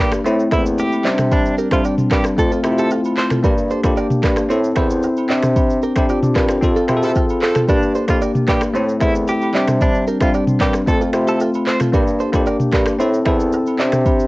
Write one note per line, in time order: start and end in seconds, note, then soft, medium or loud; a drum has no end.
0.00 0.19 G2 medium
0.00 0.28 A#3 medium
0.00 0.27 D4 medium
0.00 0.11 G4 medium
0.00 0.27 G4 medium
0.12 finger snap medium
0.12 cross-stick loud
0.12 shaker medium
0.24 0.45 A2 loud
0.24 0.47 A3 loud
0.24 0.48 C4 medium
0.24 0.49 E4 loud
0.24 0.35 A4 medium
0.24 0.35 C5 medium
0.24 shaker medium
0.40 shaker medium
0.51 0.82 E2 medium
0.51 1.04 A3 medium
0.51 0.59 A#3 medium
0.51 0.64 E4 medium
0.51 1.06 E4 medium
0.51 0.62 C5 medium
0.51 0.61 E5 medium
0.51 finger snap medium
0.51 kick medium
0.51 cross-stick loud
0.51 high agogo medium
0.51 shaker medium
0.58 1.04 C4 medium
0.66 shaker loud
0.78 1.17 G4 medium
0.78 low woodblock medium
0.78 shaker medium
0.92 high agogo medium
0.92 shaker soft
1.04 1.56 C3 loud
1.04 1.61 G3 medium
1.04 1.61 C4 medium
1.04 1.12 C#4 medium
1.04 1.15 G4 medium
1.04 1.14 D5 medium
1.04 clap loud
1.04 shaker soft
1.13 1.65 D4 medium
1.18 finger snap medium
1.18 cross-stick medium
1.18 mid tom medium
1.18 shaker medium
1.32 1.55 D4 loud
1.32 kick loud
1.32 high agogo medium
1.32 shaker medium
1.45 shaker medium
1.58 1.68 G4 medium
1.58 1.68 A#4 medium
1.58 shaker medium
1.71 1.81 C3 medium
1.71 2.37 G3 medium
1.71 2.37 C4 medium
1.71 2.38 D4 medium
1.71 1.83 F4 medium
1.71 1.81 A4 medium
1.71 1.81 C5 medium
1.71 finger snap medium
1.71 kick medium
1.71 cross-stick medium
1.71 high agogo medium
1.71 shaker loud
1.85 1.95 G4 medium
1.85 1.94 D5 medium
1.85 low woodblock medium
1.85 shaker medium
1.98 mid tom loud
1.98 shaker medium
2.11 2.31 G2 medium
2.11 2.21 G4 medium
2.11 2.24 G4 medium
2.11 2.21 A#4 medium
2.11 finger snap medium
2.11 kick medium
2.11 cross-stick medium
2.11 clap medium
2.11 high agogo medium
2.11 shaker medium
2.24 finger snap medium
2.24 cross-stick loud
2.24 shaker medium
2.37 2.58 F2 loud
2.37 2.60 A3 medium
2.37 2.60 C4 medium
2.37 2.61 F4 medium
2.37 2.50 A4 medium
2.37 kick medium
2.37 shaker medium
2.52 2.61 F4 medium
2.52 2.60 A4 medium
2.52 shaker medium
2.63 2.95 C3 loud
2.63 3.31 A3 medium
2.63 3.32 C4 medium
2.63 2.72 E4 medium
2.63 finger snap medium
2.63 cross-stick medium
2.63 high agogo medium
2.63 shaker medium
2.72 3.36 F4 medium
2.78 2.87 E4 medium
2.78 2.87 G4 medium
2.78 2.90 A4 medium
2.78 shaker medium
2.91 3.01 F4 medium
2.91 3.00 A4 medium
2.91 low woodblock medium
2.91 shaker medium
3.04 high agogo medium
3.04 shaker medium
3.17 3.27 A4 medium
3.17 3.27 C5 medium
3.17 3.30 C5 medium
3.17 clap loud
3.17 shaker medium
3.30 3.41 F4 medium
3.30 3.40 A4 medium
3.30 finger snap medium
3.30 cross-stick medium
3.30 mid tom medium
3.30 shaker medium
3.43 3.74 G2 loud
3.43 3.77 A#3 medium
3.43 3.78 D4 medium
3.43 3.54 G4 medium
3.43 3.79 G4 loud
3.43 3.53 A#4 loud
3.43 kick loud
3.43 high agogo medium
3.43 shaker medium
3.58 shaker medium
3.71 3.81 A4 medium
3.71 3.80 C5 medium
3.71 shaker medium
3.83 3.94 F2 loud
3.83 4.50 A#3 medium
3.83 4.50 D4 medium
3.83 4.51 G4 loud
3.83 finger snap medium
3.83 kick medium
3.83 cross-stick medium
3.83 high agogo medium
3.83 shaker loud
3.97 4.07 A#4 medium
3.97 4.06 D5 medium
3.97 low woodblock medium
3.97 shaker medium
4.10 mid tom loud
4.10 shaker medium
4.23 4.44 G2 medium
4.23 4.34 G4 medium
4.23 4.33 A#4 medium
4.23 finger snap medium
4.23 kick loud
4.23 cross-stick medium
4.23 clap medium
4.23 high agogo medium
4.23 shaker medium
4.36 finger snap medium
4.36 cross-stick loud
4.36 shaker medium
4.49 4.70 A2 loud
4.49 4.72 C4 loud
4.49 4.73 E4 medium
4.49 4.60 A4 medium
4.49 4.73 A4 loud
4.49 4.59 C5 medium
4.49 shaker medium
4.64 shaker medium
4.75 5.07 E2 medium
4.75 5.27 C4 medium
4.75 5.30 E4 medium
4.75 4.87 C5 medium
4.75 5.30 C5 loud
4.75 4.86 E5 medium
4.75 finger snap medium
4.75 kick medium
4.75 cross-stick loud
4.75 high agogo medium
4.75 shaker medium
4.90 shaker medium
5.03 low woodblock medium
5.03 shaker medium
5.17 high agogo medium
5.17 shaker medium
5.28 5.80 C3 loud
5.28 5.85 C4 medium
5.28 5.86 D4 medium
5.28 5.40 G4 medium
5.28 5.87 G4 loud
5.28 5.39 D5 medium
5.28 clap medium
5.28 shaker medium
5.42 finger snap medium
5.42 cross-stick medium
5.42 mid tom medium
5.42 shaker medium
5.56 kick loud
5.56 high agogo medium
5.56 shaker medium
5.70 shaker medium
5.83 5.93 G4 medium
5.83 5.92 A#4 medium
5.83 shaker medium
5.95 6.06 C3 medium
5.95 6.09 C4 medium
5.95 6.09 D4 medium
5.95 6.10 G4 loud
5.95 6.06 A4 medium
5.95 6.05 C5 medium
5.95 finger snap medium
5.95 kick medium
5.95 cross-stick medium
5.95 high agogo medium
5.95 shaker loud
6.09 6.23 C4 medium
6.09 6.22 F4 medium
6.09 6.19 G4 medium
6.09 6.19 D5 medium
6.09 low woodblock medium
6.09 shaker medium
6.23 6.36 D4 medium
6.23 6.35 G4 medium
6.23 mid tom loud
6.23 shaker medium
6.35 6.56 G2 medium
6.35 6.49 F4 medium
6.35 6.46 G4 medium
6.35 6.49 A#4 medium
6.35 6.45 A#4 medium
6.35 finger snap medium
6.35 kick medium
6.35 cross-stick medium
6.35 clap medium
6.35 high agogo medium
6.35 shaker medium
6.49 6.75 G4 medium
6.49 6.75 C5 medium
6.49 finger snap medium
6.49 cross-stick medium
6.49 shaker medium
6.61 6.83 F2 medium
6.61 6.85 C4 loud
6.61 6.85 F4 medium
6.61 6.86 A4 loud
6.61 kick medium
6.61 shaker medium
6.76 6.85 F4 medium
6.76 6.85 A4 medium
6.76 shaker medium
6.88 7.20 C3 medium
6.88 7.56 C4 medium
6.88 7.57 F4 medium
6.88 6.96 G#4 medium
6.88 finger snap medium
6.88 cross-stick loud
6.88 mid tom medium
6.88 high agogo medium
6.88 shaker medium
6.97 7.61 A4 loud
7.03 7.11 C4 loud
7.03 7.12 E4 medium
7.03 7.11 F4 loud
7.03 7.12 G4 medium
7.03 7.11 A4 loud
7.03 shaker loud
7.15 7.26 F4 medium
7.15 7.25 A4 medium
7.15 kick medium
7.15 low woodblock medium
7.15 shaker medium
7.29 high agogo medium
7.29 shaker soft
7.42 7.59 C4 loud
7.42 7.59 F4 loud
7.42 7.59 A4 loud
7.42 7.52 A4 medium
7.42 7.52 C5 medium
7.42 clap medium
7.42 shaker medium
7.55 7.65 F4 medium
7.55 7.65 A4 medium
7.55 finger snap medium
7.55 cross-stick medium
7.55 mid tom medium
7.55 shaker medium
7.68 7.99 G2 loud
7.68 8.02 A#3 medium
7.68 8.03 D4 medium
7.68 7.92 D4 loud
7.68 7.79 G4 medium
7.68 8.03 G4 medium
7.68 7.78 A#4 loud
7.68 kick loud
7.68 high agogo medium
7.68 shaker medium
7.82 shaker medium
7.95 8.05 A4 medium
7.95 8.05 C5 medium
7.95 shaker medium
8.08 8.18 F2 loud
8.08 8.74 A#3 medium
8.08 8.75 D4 medium
8.08 8.20 F4 medium
8.08 8.76 G4 medium
8.08 finger snap medium
8.08 kick medium
8.08 cross-stick medium
8.08 high agogo medium
8.08 shaker loud
8.22 8.32 A#4 medium
8.22 8.31 D5 medium
8.22 low woodblock medium
8.22 shaker medium
8.35 mid tom loud
8.35 shaker medium
8.48 8.68 G2 medium
8.48 8.58 G4 medium
8.48 8.61 G4 medium
8.48 8.58 A#4 medium
8.48 finger snap medium
8.48 kick medium
8.48 cross-stick medium
8.48 clap medium
8.48 high agogo medium
8.48 shaker medium
8.61 finger snap medium
8.61 cross-stick medium
8.61 shaker medium
8.74 8.95 A2 loud
8.74 8.97 A3 loud
8.74 8.98 C4 medium
8.74 8.98 E4 loud
8.74 8.85 A4 medium
8.74 8.84 C5 medium
8.74 shaker medium
8.89 shaker medium
9.00 9.32 E2 medium
9.00 9.54 A3 medium
9.00 9.53 C4 medium
9.00 9.14 E4 medium
9.00 9.55 E4 medium
9.00 9.11 C5 medium
9.00 9.11 E5 medium
9.00 finger snap medium
9.00 kick medium
9.00 cross-stick medium
9.00 high agogo medium
9.00 shaker medium
9.15 shaker loud
9.28 9.66 G4 medium
9.28 low woodblock medium
9.28 shaker medium
9.42 high agogo medium
9.42 shaker soft
9.53 10.05 C3 loud
9.53 10.10 G3 medium
9.53 10.11 C4 medium
9.53 10.11 D4 medium
9.53 9.64 G4 medium
9.53 9.64 D5 medium
9.53 clap medium
9.53 shaker medium
9.68 finger snap medium
9.68 cross-stick medium
9.68 mid tom medium
9.68 shaker medium
9.81 10.04 D4 loud
9.81 kick loud
9.81 high agogo medium
9.81 shaker medium
9.95 shaker medium
10.07 10.18 G4 medium
10.07 10.17 A#4 medium
10.07 shaker medium
10.20 10.31 C3 medium
10.20 10.87 G3 medium
10.20 10.86 C4 medium
10.20 10.88 D4 medium
10.20 10.33 F4 medium
10.20 10.31 A4 medium
10.20 10.30 C5 medium
10.20 finger snap medium
10.20 kick loud
10.20 cross-stick medium
10.20 high agogo medium
10.20 shaker loud
10.34 10.44 G4 medium
10.34 10.44 D5 medium
10.34 low woodblock medium
10.34 shaker medium
10.47 mid tom loud
10.47 shaker medium
10.60 10.81 G2 medium
10.60 10.73 G4 medium
10.60 10.71 G4 medium
10.60 10.70 A#4 medium
10.60 finger snap medium
10.60 kick medium
10.60 cross-stick medium
10.60 clap medium
10.60 high agogo medium
10.60 shaker medium
10.73 finger snap medium
10.73 cross-stick medium
10.73 shaker medium
10.86 11.07 F2 loud
10.86 11.09 A3 medium
10.86 11.10 C4 medium
10.86 11.11 F4 medium
10.86 11.00 A4 medium
10.86 kick medium
10.86 shaker medium
11.01 11.10 F4 medium
11.01 11.10 A4 medium
11.01 shaker medium
11.13 11.44 C3 medium
11.13 11.81 A3 medium
11.13 11.82 C4 medium
11.13 11.82 F4 medium
11.13 finger snap medium
11.13 cross-stick loud
11.13 high agogo medium
11.13 shaker medium
11.28 11.37 E4 medium
11.28 11.36 G4 medium
11.28 11.39 A4 medium
11.28 shaker loud
11.40 11.50 F4 medium
11.40 11.50 A4 medium
11.40 low woodblock medium
11.40 shaker medium
11.54 high agogo medium
11.54 shaker medium
11.67 11.77 A4 medium
11.67 11.76 C5 medium
11.67 11.79 C5 medium
11.67 clap loud
11.67 shaker medium
11.80 11.90 F4 medium
11.80 11.89 A4 medium
11.80 finger snap medium
11.80 cross-stick medium
11.80 mid tom medium
11.80 shaker medium
11.92 12.24 G2 loud
11.92 12.27 A#3 medium
11.92 12.27 D4 medium
11.92 12.03 G4 medium
11.92 12.28 G4 loud
11.92 12.03 A#4 loud
11.92 kick loud
11.92 high agogo medium
11.92 shaker medium
12.07 shaker medium
12.20 12.30 A4 medium
12.20 12.29 C5 medium
12.20 shaker medium
12.33 12.43 F2 loud
12.33 12.99 A#3 medium
12.33 13.00 D4 medium
12.33 13.00 G4 loud
12.33 finger snap medium
12.33 kick medium
12.33 cross-stick medium
12.33 high agogo medium
12.33 shaker loud
12.46 12.57 A#4 medium
12.46 12.56 D5 medium
12.46 low woodblock medium
12.46 shaker medium
12.60 mid tom loud
12.60 shaker medium
12.72 12.93 G2 medium
12.72 12.83 G4 medium
12.72 12.82 A#4 medium
12.72 finger snap medium
12.72 kick loud
12.72 cross-stick medium
12.72 clap medium
12.72 high agogo medium
12.72 shaker medium
12.86 finger snap medium
12.86 cross-stick loud
12.86 shaker medium
12.98 13.20 A2 loud
12.98 13.22 C4 loud
12.98 13.22 E4 medium
12.98 13.10 A4 medium
12.98 13.23 A4 loud
12.98 13.09 C5 medium
12.98 shaker medium
13.14 shaker medium
13.25 13.57 E2 medium
13.25 13.77 C4 medium
13.25 13.79 E4 medium
13.25 13.80 A4 loud
13.25 13.36 C5 medium
13.25 13.36 E5 medium
13.25 finger snap medium
13.25 kick medium
13.25 cross-stick loud
13.25 high agogo medium
13.25 shaker medium
13.40 shaker medium
13.52 low woodblock medium
13.52 shaker medium
13.66 high agogo medium
13.66 shaker medium
13.78 14.27 C3 loud
13.78 14.27 C4 medium
13.78 13.86 C#4 medium
13.78 13.89 G4 medium
13.78 14.27 G4 loud
13.78 13.89 D5 medium
13.78 clap medium
13.78 shaker soft
13.86 14.27 D4 medium
13.92 finger snap medium
13.92 cross-stick medium
13.92 mid tom medium
13.92 shaker medium
14.06 kick loud
14.06 high agogo medium
14.06 shaker medium
14.20 shaker medium